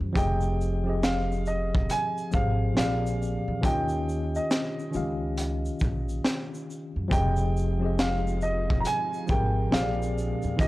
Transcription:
Already playing: tine electric piano C5
0.00 upright bass F#2
0.13 upright bass F1, tine electric piano F3 C4 G4, upright piano G5, kick, closed hi-hat, shaker
0.17 tine electric piano G#4 D#5
0.41 shaker
0.61 shaker
0.84 tine electric piano F3 C4 G4
0.88 tine electric piano G#4 D#5
1.03 upright piano F5, snare, closed hi-hat, shaker
1.32 shaker
1.46 upright piano D#5, shaker
1.75 kick
1.90 upright piano G#5, closed hi-hat, shaker
2.18 shaker
2.31 upright bass G#1, tine electric piano F3 C4 G4, upright piano F5, kick, shaker
2.35 tine electric piano G#4 C5
2.74 upright bass A#1, tine electric piano A#2 F3 C4 G4, snare
2.78 tine electric piano G#4 D5, upright piano F5, closed hi-hat, shaker
3.07 shaker
3.22 shaker
3.48 upright bass E2
3.61 upright bass D#2, tine electric piano D#3 C#4 F4, upright piano G5, kick, closed hi-hat, shaker
3.65 tine electric piano G4 D#5
3.88 shaker
4.09 shaker
4.35 upright piano D#5, shaker
4.51 snare, closed hi-hat, shaker
4.79 shaker
4.91 upright bass C#2, tine electric piano D#3 C#4 F4, shaker
4.95 tine electric piano G4 F5
5.38 closed hi-hat, shaker
5.66 shaker
5.79 upright bass A#1, kick, shaker
6.09 shaker
6.24 snare, closed hi-hat, shaker
6.54 shaker
6.70 shaker
6.96 upright bass F#2
7.08 upright bass F1, tine electric piano F3 C4 G4, string machine F3 G#3 D#4 F4, kick
7.12 tine electric piano G#4 D#5, upright piano G5, closed hi-hat, shaker
7.36 shaker
7.57 shaker
7.80 tine electric piano F3 C4 G4
7.84 tine electric piano G#4 D#5
7.99 upright piano F5, snare, closed hi-hat, shaker
8.27 shaker
8.41 upright piano D#5, shaker
8.70 kick
8.80 upright piano A#5
8.85 upright piano G#5, closed hi-hat, shaker
9.14 shaker
9.27 upright bass G#1, tine electric piano F3 C4 G4, upright piano G5, kick, shaker
9.31 tine electric piano G#4 A#4
9.70 upright bass A#1, tine electric piano A#2 F3 C4 G4, string machine G#3 A#3 D4, upright piano F5, snare
9.74 tine electric piano G#4 C5, closed hi-hat, shaker
9.82 tine electric piano D5
10.02 shaker
10.18 shaker
10.42 upright bass E2, shaker
10.57 upright bass D#2, tine electric piano D#3 C#4 F4, string machine D#3 C#4 F4 G4, upright piano D#5, kick, closed hi-hat, shaker
10.61 tine electric piano G4 D#5

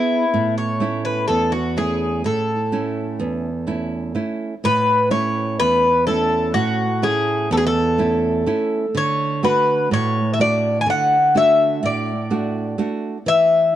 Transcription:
Already playing: nylon-string guitar B3 E4 G#4 B4, bouzouki E4
0.34 nylon-string guitar A2
0.58 bouzouki C#5
0.80 nylon-string guitar A3 C#4 E4
1.05 bouzouki B4
1.28 nylon-string guitar E2, bouzouki A4
1.52 bouzouki F#4
1.77 nylon-string guitar A3 C#4 E4, bouzouki G#4
2.24 nylon-string guitar A2, bouzouki A4
2.72 nylon-string guitar A3 C#4 E4
3.20 nylon-string guitar E2
3.67 nylon-string guitar A3 C#4 E4
4.15 nylon-string guitar A3 C#4 E4
4.64 nylon-string guitar A2, bouzouki B4
5.11 nylon-string guitar A3 C#4 E4, bouzouki C#5
5.60 nylon-string guitar E2, bouzouki B4
6.07 nylon-string guitar A3 C#4 E4, bouzouki A4
6.54 nylon-string guitar A2, bouzouki F#4
7.02 nylon-string guitar A3 C#4 E4, bouzouki G#4
7.51 nylon-string guitar E2, bouzouki A4
7.57 bouzouki G#4
7.67 bouzouki A4
7.98 nylon-string guitar A3 C#4 E4
8.46 nylon-string guitar A3 C#4 E4
8.95 nylon-string guitar D3, bouzouki C#5
9.43 nylon-string guitar A3 D4 F#4, bouzouki B4
9.91 nylon-string guitar A2, bouzouki C#5
10.34 bouzouki E5
10.39 nylon-string guitar A3 D4 F#4, bouzouki D5
10.81 bouzouki G#5
10.86 nylon-string guitar D3, bouzouki F#5
11.35 nylon-string guitar A3 D4 F#4, bouzouki E5
11.83 nylon-string guitar A2, bouzouki D5
12.30 nylon-string guitar A3 D4 F#4
12.78 nylon-string guitar A3 D4 F#4
13.26 nylon-string guitar E3, bouzouki E5

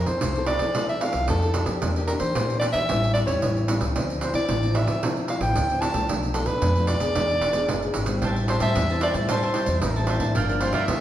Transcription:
Already playing: nylon-string guitar F3
0.06 upright bass F3, nylon-string guitar C4 E4 A4, soprano saxophone C5, pandeiro
0.21 upright bass C2, nylon-string guitar C3, pandeiro
0.35 nylon-string guitar C4 E4 A4, pandeiro
0.46 soprano saxophone D5, pandeiro
0.59 upright bass F3, nylon-string guitar C4 E4 A4, pandeiro
0.75 nylon-string guitar F3 C4 E4 A4, pandeiro
0.89 soprano saxophone E5, pandeiro
1.01 nylon-string guitar C4 E4 A4, soprano saxophone F5, pandeiro
1.13 upright bass C2, pandeiro
1.28 upright bass F2, nylon-string guitar C3, soprano saxophone A4, pandeiro
1.42 nylon-string guitar C4 E4 A4, pandeiro
1.54 pandeiro
1.66 upright bass F3, nylon-string guitar A#3 D4 G4, pandeiro
1.82 upright bass E2, nylon-string guitar E3, pandeiro
1.96 nylon-string guitar A#3 D4 G4, pandeiro
2.07 soprano saxophone A#4, pandeiro
2.19 upright bass E3, soprano saxophone C5, pandeiro
2.35 upright bass A#2, nylon-string guitar E3 A#3 D4 G4, pandeiro
2.50 pandeiro
2.59 soprano saxophone D5, pandeiro
2.73 upright bass E3, soprano saxophone E5, pandeiro
2.89 upright bass A1, nylon-string guitar A2 G3 C#4 E4, pandeiro
3.04 pandeiro
3.13 soprano saxophone D5, pandeiro
3.27 upright bass E2, nylon-string guitar G3 C#4 E4, soprano saxophone C#5, pandeiro
3.42 upright bass A1, nylon-string guitar E3, pandeiro
3.57 pandeiro
3.68 nylon-string guitar G3 C#4 E4, pandeiro
3.81 upright bass C#2, pandeiro
3.96 upright bass D2, nylon-string guitar D3 F3 C4 E4, pandeiro
4.10 pandeiro
4.21 soprano saxophone C5, pandeiro
4.33 upright bass D3, nylon-string guitar F3 C4 E4, soprano saxophone D5, pandeiro
4.49 upright bass A1, nylon-string guitar A2, pandeiro
4.63 nylon-string guitar F3 C4 E4, pandeiro
4.75 soprano saxophone E5, pandeiro
4.87 upright bass D3, pandeiro
5.03 nylon-string guitar D3 F3 C4 E4, pandeiro
5.17 pandeiro
5.28 nylon-string guitar F3 C4 E4, soprano saxophone F5, pandeiro
5.40 upright bass A1, soprano saxophone G5, pandeiro
5.55 upright bass D2, nylon-string guitar A2, pandeiro
5.70 nylon-string guitar F3 C4 E4, pandeiro
5.81 soprano saxophone A5, pandeiro
5.94 upright bass C2, nylon-string guitar F3 A3 D4, pandeiro
6.09 upright bass B1, nylon-string guitar B2, pandeiro
6.23 pandeiro
6.34 soprano saxophone A4, pandeiro
6.46 upright bass B2, nylon-string guitar F3 A3 D4, soprano saxophone B4, pandeiro
6.61 upright bass F2, nylon-string guitar B2, pandeiro
6.76 nylon-string guitar F3 A3 D4, pandeiro
6.87 soprano saxophone D5, pandeiro
7.00 upright bass D2, nylon-string guitar B3 D4 G#4, pandeiro
7.15 upright bass E2, nylon-string guitar E3, pandeiro
7.30 pandeiro
7.41 upright bass E1, pandeiro
7.53 nylon-string guitar B3 D4 G#4, pandeiro
7.69 upright bass F#1, nylon-string guitar B2, pandeiro
7.83 nylon-string guitar B3 D4 G#4, pandeiro
7.94 upright bass G#1, pandeiro
8.06 nylon-string guitar G3 C4 E4, pandeiro
8.22 upright bass A1, nylon-string guitar A2, cavaquinho G4 C5 E5 A5, pandeiro
8.36 pandeiro
8.48 cavaquinho G4 C5 E5 A5, soprano saxophone C5, pandeiro
8.60 upright bass A2, nylon-string guitar G3 C4 E4, cavaquinho G4 C5 E5 A5, soprano saxophone E5, pandeiro
8.75 upright bass E2, pandeiro
8.90 nylon-string guitar G3 C4 E4, cavaquinho C5 E5 A5, pandeiro
9.01 cavaquinho G4 C5 E5 A5, soprano saxophone D5, pandeiro
9.14 upright bass A2, nylon-string guitar G3 C4 E4, cavaquinho C5 E5 A5, pandeiro
9.29 nylon-string guitar A2 G3 C4 E4, cavaquinho G4 C5 E5 A5, soprano saxophone C5, pandeiro
9.42 cavaquinho G4 C5 E5 A5, pandeiro
9.54 nylon-string guitar G3 C4 E4, cavaquinho G4 C5 E5 A5, pandeiro
9.66 upright bass E2, pandeiro
9.82 upright bass A1, nylon-string guitar E3, pandeiro
9.96 nylon-string guitar G3 C4 E4, cavaquinho C5 E5 A5, pandeiro
10.07 cavaquinho G4 C5 E5 A5, pandeiro
10.20 upright bass A2, nylon-string guitar F3 A#3 D4, cavaquinho C5 E5 A5, pandeiro
10.35 upright bass G1, nylon-string guitar G2, cavaquinho F4 A#4 D5 G5, pandeiro
10.49 nylon-string guitar F3 A#3 D4, pandeiro
10.61 cavaquinho F4 A#4 D5 G5, soprano saxophone C5, pandeiro
10.73 upright bass G2, cavaquinho F4 A#4 D5 G5, soprano saxophone E5, pandeiro
10.88 upright bass D2, nylon-string guitar D3 F3 A#3 D4, pandeiro

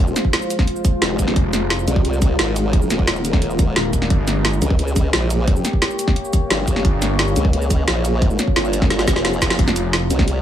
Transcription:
Already playing: wobble bass G#1, ambient pad G#3 F4 C5
0.08 shaker
0.16 snare, closed hi-hat, shaker
0.25 kick
0.33 snare, closed hi-hat
0.42 shaker
0.50 closed hi-hat, shaker
0.59 kick, snare
0.67 closed hi-hat
0.76 shaker
0.85 kick, closed hi-hat, shaker
1.02 wobble bass F1, snare, closed hi-hat
1.19 wobble bass F1, kick, open hi-hat, shaker
1.28 snare
1.36 detuned saw bass F1, ambient pad A#4, kick, closed hi-hat
1.53 snare, closed hi-hat, shaker
1.70 snare, closed hi-hat
1.79 shaker
1.88 wobble bass C2, closed hi-hat, shaker
1.96 kick
2.05 closed hi-hat
2.13 shaker
2.22 kick, closed hi-hat, shaker
2.39 wobble bass G#1, snare, closed hi-hat
2.56 open hi-hat, shaker
2.73 kick, closed hi-hat
2.82 shaker
2.90 wobble bass D#1, snare, closed hi-hat, shaker
2.99 kick
3.07 snare, closed hi-hat
3.16 shaker
3.25 closed hi-hat, shaker
3.33 kick, snare
3.42 closed hi-hat
3.50 shaker
3.59 kick, closed hi-hat, shaker
3.76 detuned saw bass D#1, snare, closed hi-hat
3.93 kick, open hi-hat, shaker
4.02 snare
4.10 detuned saw bass G1, ambient pad A#3 G4 C#5, kick, closed hi-hat
4.27 snare, closed hi-hat, shaker
4.45 snare, closed hi-hat
4.53 shaker
4.62 wobble bass C#2, closed hi-hat, shaker
4.70 kick
4.79 closed hi-hat
4.88 shaker
4.96 kick, closed hi-hat, shaker
5.13 wobble bass A#1, snare, closed hi-hat
5.30 open hi-hat, shaker
5.48 kick, closed hi-hat
5.56 shaker
5.65 snare, closed hi-hat, shaker
5.73 kick
5.82 snare, closed hi-hat
5.90 shaker
5.99 closed hi-hat, shaker
6.08 kick, snare
6.16 closed hi-hat
6.25 shaker
6.33 kick, closed hi-hat, shaker
6.50 wobble bass G1, snare, closed hi-hat
6.68 wobble bass G1, kick, open hi-hat, shaker
6.76 snare
6.85 detuned saw bass G1, ambient pad F4, kick, closed hi-hat
7.02 snare, closed hi-hat, shaker
7.19 snare, closed hi-hat
7.28 shaker
7.36 wobble bass C#2, closed hi-hat, shaker
7.45 kick
7.53 closed hi-hat
7.62 shaker
7.70 kick, closed hi-hat, shaker
7.88 wobble bass A#1, snare, closed hi-hat
8.05 open hi-hat, shaker
8.22 kick, closed hi-hat
8.30 shaker
8.39 snare, closed hi-hat, shaker
8.48 kick
8.56 wobble bass G1, snare, closed hi-hat
8.65 shaker
8.73 closed hi-hat, shaker
8.82 kick, snare
8.90 snare, closed hi-hat
8.99 snare, shaker
9.08 wobble bass F1, kick, snare, closed hi-hat, shaker
9.16 snare
9.25 snare, closed hi-hat
9.33 shaker
9.42 wobble bass F1, kick, snare, open hi-hat, shaker
9.50 snare
9.59 detuned saw bass F1, ambient pad G#3 F4 C5, kick, closed hi-hat
9.68 snare, shaker
9.76 closed hi-hat, shaker
9.93 snare, closed hi-hat
10.10 wobble bass C2, closed hi-hat, shaker
10.19 kick, snare
10.28 closed hi-hat

